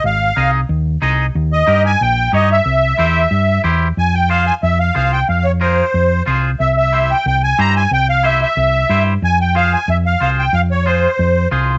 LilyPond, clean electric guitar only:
\new Staff \with { instrumentName = "Clean electric guitar" } { \time 4/4 \key c \phrygian \tempo 4 = 183 r4 <ees' aes' ees''>8 r4. <ees' aes' ees''>8 r8 | r4 <ees' g' bes'>8 r4. <ees' g' des''>8 r8 | r4 <e' g' c''>8 r4. <e' g' c''>8 r8 | \key f \minor r4 <f' aes' c''>8 r4. <f' aes' c''>8 r8 |
r4 <f' aes' bes'>8 r4. <f' aes' c''>8 r8 | r4 <e' g' c''>8 r4. <e' g' c''>8 r8 | r4 <e' g' c''>8 r4. <e' g' c''>8 r8 | r4 <f' aes' c''>8 r4. <f' aes' c''>8 r8 |
r4 <f' aes' c''>8 r4. <f' aes' c''>8 r8 | }